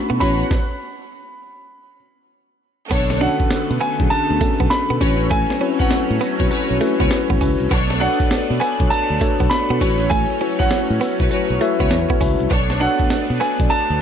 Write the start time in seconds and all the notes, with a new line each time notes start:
Already playing: A3 C#4 D4 E4 F#4 A4 B4 C#5 B5
0.10 B2 B3
0.20 A1 B3 C#4 E4 F#4 B4 C#5 F#5 B5, kick, open hi-hat
0.40 closed hi-hat
0.51 kick, snare
2.91 B1 D3 A3 B3 D4 A4 C#5, kick, closed hi-hat, crash, tambourine
3.10 muted clean electric guitar stroke, snare
3.21 C#4 D4 F#4 A4 F#5, closed hi-hat
3.40 kick, closed hi-hat
3.50 muted fingered electric bass stroke, snare, closed hi-hat, tambourine
3.71 B2
3.80 B3 G#5, closed hi-hat, tambourine
4.00 B1 C#4 D4 F#4 G#4, kick, closed hi-hat
4.10 A5, muted clean electric guitar stroke, closed hi-hat, tambourine
4.30 D2
4.40 A3 C#4 D4 F#4 A4, kick, closed hi-hat, tambourine
4.60 B1 B3, kick, closed hi-hat
4.70 B5, muted clean electric guitar stroke, snare, closed hi-hat, tambourine
4.90 B2 B3
5.00 A1 F#3 A3 C#4 E4 F#4 B4 C#5, kick, open hi-hat, tambourine
5.20 closed hi-hat
5.30 A3 G#5, kick, closed hi-hat, tambourine
5.50 muted clean electric guitar stroke, snare
5.61 C4 C#4 E4 F#4 B4, closed hi-hat
5.67 C#4
5.79 F#4 B4 C#5 F#5, kick, closed hi-hat
5.91 muted fingered electric bass stroke, snare, closed hi-hat, tambourine
6.11 A2
6.21 B3, closed hi-hat, tambourine
6.40 B1 C#4 E4 F#4 B4 C#5, kick, closed hi-hat
6.50 F#4 B4 C#5, muted clean electric guitar stroke, closed hi-hat, tambourine
6.71 B1
6.81 A3 C#4 E4 F#4 B4, closed hi-hat, tambourine
7.00 C#2 B3 F#4 B4 C#5, kick, closed hi-hat
7.11 muted clean electric guitar stroke, snare, closed hi-hat, tambourine
7.30 A1 B3, kick
7.41 C#2 C#4 E4 F#4 B4, kick, open hi-hat, tambourine
7.60 C2, closed hi-hat
7.71 B1 A3 B3 D4 A4 C#5, kick, closed hi-hat, tambourine
7.90 muted clean electric guitar stroke, snare
8.00 D4 F#4 A4 C#5 F#5, closed hi-hat
8.20 kick, closed hi-hat
8.31 muted fingered electric bass stroke, snare, closed hi-hat, tambourine
8.50 B2
8.60 B3 G#5, closed hi-hat, tambourine
8.80 B1 D4 F#4 A4 C#5, kick, closed hi-hat
8.90 A5, muted clean electric guitar stroke, closed hi-hat, tambourine
9.10 D2
9.21 A3 D4 F#4 A4 C#5, kick, closed hi-hat, tambourine
9.40 B1 B3, kick, closed hi-hat
9.50 B5, muted clean electric guitar stroke, snare, closed hi-hat, tambourine
9.70 B2 B3
9.81 A1 F#3 C#4 E4 F#4 B4 C#5, kick, open hi-hat, tambourine
10.00 closed hi-hat
10.10 A3 G#5, kick, closed hi-hat, tambourine
10.30 muted clean electric guitar stroke
10.41 C#4 E4 F#4 B4 C#5, closed hi-hat
10.59 F#4 B4 C#5 F#5, kick, closed hi-hat
10.71 muted fingered electric bass stroke, snare, closed hi-hat, tambourine
10.90 A2
11.01 B3, open hi-hat, tambourine
11.20 B1 E4 F#4 B4 C#5, kick, closed hi-hat
11.30 F#4 B4 C#5, muted clean electric guitar stroke, closed hi-hat, tambourine
11.50 B1
11.61 A3 E4 F#4 B4 E5, closed hi-hat, tambourine
11.79 C#2 B3 F#4 B4 C#5, kick, closed hi-hat
11.91 E2, muted clean electric guitar stroke, snare, closed hi-hat, tambourine
12.10 B3, kick
12.21 C#2 C#4 E4 F#4 B4 E5, kick, open hi-hat, tambourine
12.40 C2, closed hi-hat
12.50 B1 A3 B3 D4 A4 C#5, kick, closed hi-hat, tambourine
12.70 muted clean electric guitar stroke, snare
12.80 D4 F#4 A4 C#5 F#5, closed hi-hat
13.00 kick, closed hi-hat
13.10 muted fingered electric bass stroke, snare, closed hi-hat, tambourine
13.30 B2
13.40 B3 G#5, closed hi-hat, tambourine
13.60 B1 D4 F#4 A4 D5, kick, closed hi-hat
13.70 A5, muted clean electric guitar stroke, closed hi-hat, tambourine
13.90 D2